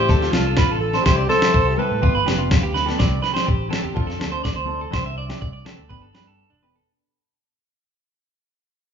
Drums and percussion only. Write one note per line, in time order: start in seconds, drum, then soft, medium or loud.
0.09 kick loud
0.09 snare soft
0.22 snare soft
0.33 snare medium
0.57 kick medium
0.57 snare medium
0.94 snare soft
1.06 kick medium
1.06 snare medium
1.30 snare soft
1.42 snare medium
1.54 kick medium
2.03 kick loud
2.28 snare medium
2.51 kick medium
2.51 snare medium
2.76 snare soft
2.89 snare soft
3.00 kick medium
3.00 snare medium
3.24 snare soft
3.36 snare medium
3.48 kick medium
3.73 snare medium
3.97 kick medium
4.10 snare soft
4.21 snare medium
4.45 kick medium
4.45 snare medium
4.93 kick medium
4.93 snare medium
5.30 snare medium
5.42 kick medium
5.66 snare medium
5.91 kick medium
6.15 snare medium